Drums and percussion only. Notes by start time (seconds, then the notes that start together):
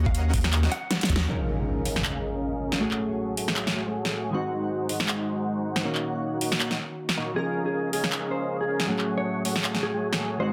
0.06 kick
0.15 closed hi-hat
0.34 kick, open hi-hat
0.44 snare
0.53 clap, closed hi-hat
0.63 snare
0.72 closed hi-hat
0.91 snare, closed hi-hat
1.01 snare, closed hi-hat
1.05 closed hi-hat
1.10 kick, closed hi-hat
1.16 snare
1.85 open hi-hat
1.96 snare
2.04 finger snap, clap
2.72 snare
2.91 clap
3.37 open hi-hat
3.48 snare
3.56 finger snap, clap
3.67 snare
4.05 snare
4.89 open hi-hat
5.00 snare
5.08 finger snap, clap
5.76 snare
5.95 clap
6.41 open hi-hat
6.52 snare
6.60 finger snap, clap
6.71 snare
7.09 snare
7.93 open hi-hat
8.04 snare
8.12 finger snap, clap
8.80 snare
8.99 clap
9.45 open hi-hat
9.56 snare
9.64 finger snap, clap
9.75 snare
10.13 snare